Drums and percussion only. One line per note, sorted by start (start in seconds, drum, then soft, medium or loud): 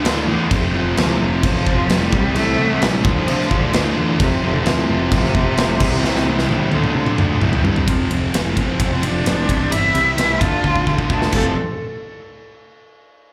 0.05 snare loud
0.05 crash medium
0.51 kick loud
0.51 crash medium
0.97 snare loud
0.97 crash medium
1.43 kick loud
1.43 crash medium
1.67 kick medium
1.90 snare loud
1.90 crash medium
2.13 kick loud
2.36 crash medium
2.82 snare loud
2.82 crash medium
3.05 kick loud
3.28 crash medium
3.41 snare soft
3.51 kick medium
3.73 snare loud
3.73 crash medium
4.20 kick loud
4.20 crash medium
4.66 snare loud
4.66 crash medium
5.12 kick loud
5.12 crash medium
5.25 snare soft
5.35 kick medium
5.58 snare loud
5.58 crash medium
5.80 kick loud
5.80 crash loud
6.04 snare medium
6.16 snare medium
6.39 snare medium
6.49 high tom medium
6.72 high tom medium
6.84 mid tom medium
7.06 mid tom medium
7.18 mid tom loud
7.41 mid tom loud
7.53 floor tom loud
7.65 floor tom loud
7.76 floor tom loud
7.88 kick loud
7.88 ride medium
8.11 ride medium
8.34 snare loud
8.34 ride medium
8.57 kick loud
8.57 ride medium
8.80 kick loud
8.80 ride loud
9.03 ride medium
9.26 snare loud
9.26 ride medium
9.49 kick loud
9.49 ride medium
9.72 ride loud
9.95 ride medium
10.18 snare loud
10.18 ride loud
10.41 kick loud
10.41 ride medium
10.64 kick medium
10.76 kick medium
10.87 kick medium
10.98 kick medium
11.10 kick medium
11.22 snare medium
11.32 kick loud
11.32 crash medium